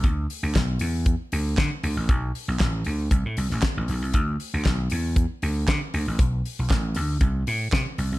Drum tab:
HH |x-o-x-o-x-o-x-o-|x-o-x-o-x-o-x-o-|x-o-x-o-x-o-x-o-|x-o-x-o-x-o-x-o-|
CP |----x-------x---|----x-------x---|----x-------x---|----x-------x---|
SD |----o-------o---|----o------oo---|----o-------o---|----o-------o---|
BD |o---o---o---o---|o---o---o---o---|o---o---o---o---|o---o---o---o---|